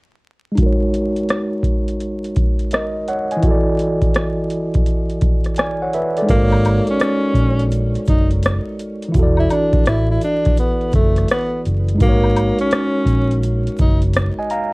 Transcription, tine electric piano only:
0.52 G#3 D#4
0.59 F#4 A#4
0.66 C#5
2.73 A#4 D#5
3.08 C#5 F#5
3.32 D#5 G#5
3.37 E3 E4
3.44 F#4 A4
3.51 D5
5.58 D5 G#5
5.82 C#5 F#5
5.94 B4 E5
6.17 A4 D5
6.22 G#3 D#4
6.29 F#4
6.36 C5
6.43 C#5
9.09 E3 E4
9.16 F#4 A4
9.23 D5
11.94 G#3 D#4
12.02 F#4 A#4
12.09 C#5
14.39 D#5 G#5
14.51 F5 A#5

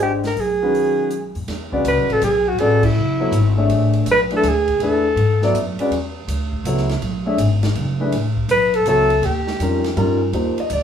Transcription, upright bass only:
Already playing: G#1
0.36 B1
1.35 F2
1.48 E2
1.84 C#2
1.97 B1
2.09 A1
2.22 B1
2.59 A1
2.95 F#1
3.31 G#1
3.69 A1
4.06 B1
4.43 D2
4.80 E2
5.16 G#2
5.53 F#2
5.78 muted upright bass stroke
5.90 E2
6.27 D2
6.64 C#2
7.01 B1
7.38 G#1
7.75 F#1
8.12 A1
8.48 B1
8.85 C#2
9.22 D#2
9.59 F2
9.96 G2
10.33 D#2
10.57 muted upright bass stroke
10.70 D2

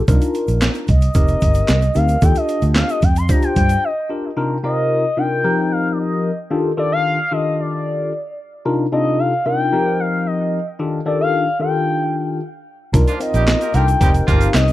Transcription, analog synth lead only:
0.90 D#5
1.96 F5
2.24 G5
2.37 D#5
2.77 F5
2.90 D#5
3.03 G5
3.17 C6
3.31 A#5
3.44 G5
3.57 G5
3.84 D#5
4.65 D#5
5.18 G5
5.72 F5
5.92 D5
5.99 D#5
6.79 D5
6.92 F5
7.33 D#5
7.60 D5
8.93 D#5
9.19 F5
9.46 G5
10.00 F5
10.26 D#5
11.07 D5
11.21 F5
11.61 G5
13.22 D#5
13.74 G5
14.27 F5
14.54 D#5

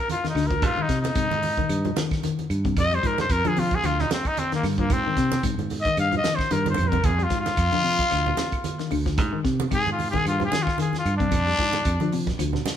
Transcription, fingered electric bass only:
0.35 D2
0.63 G#2
0.89 C3
1.15 G#2
1.31 G#2
1.69 G2
2.50 G2
2.77 F2
3.04 G#2
3.30 F2
3.45 F3
3.83 D2
4.63 G2
4.90 G#2
5.17 C3
5.44 G#2
5.58 G#2
5.97 G2
6.51 G2
6.78 F2
7.04 F2
7.31 G#2
7.57 F2
7.74 F3
8.12 D2
8.92 D2
9.18 G#2
9.45 C3
9.72 G#2
9.87 G#2
10.26 G2
11.05 G2
11.32 F2
11.59 G#2
11.85 F2
12.01 F3
12.39 D2

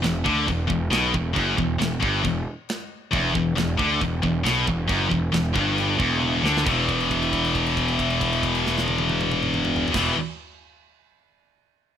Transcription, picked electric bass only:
0.03 E1
0.26 D2
0.48 E1
0.70 E1
0.90 B1
1.15 E1
1.36 F#1
1.58 E1
1.79 E1
2.03 G1
2.25 E1
3.13 E1
3.35 E1
3.57 E1
3.79 D2
4.01 E1
4.23 E1
4.44 B1
4.68 E1
4.89 F#1
5.12 E1
5.33 E1
5.56 G1
5.99 E1
6.43 D2
6.67 E1
9.94 E1

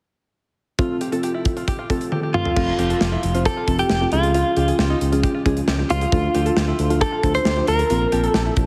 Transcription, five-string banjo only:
0.79 F4
1.01 G4
1.12 A4
1.23 G4
1.34 E4
1.57 F4
1.68 G4
1.79 F4
1.90 A4
2.12 G4
2.23 G4
2.34 F4
2.45 A4
2.56 F4
2.79 G4
2.90 A4
3.01 G4
3.12 E4
3.34 F4
3.45 G4
3.57 F4
3.68 A4
3.90 G4
4.01 G4
4.12 F4
4.24 G#4
4.34 F4
4.57 G4
4.68 G#4
4.79 G4
4.90 D#4
5.12 F4
5.23 G4
5.35 F4
5.46 G#4
5.68 G4
5.79 G4
5.90 F4
6.01 G#4
6.12 F4
6.35 G4
6.46 A4
6.57 G4
6.68 E4
6.90 F4
7.01 G4
7.12 F4
7.23 A4
7.46 G4
7.57 G4
7.68 F4
7.79 A4
7.90 F4
8.12 G4
8.23 A4
8.34 G4
8.45 E4

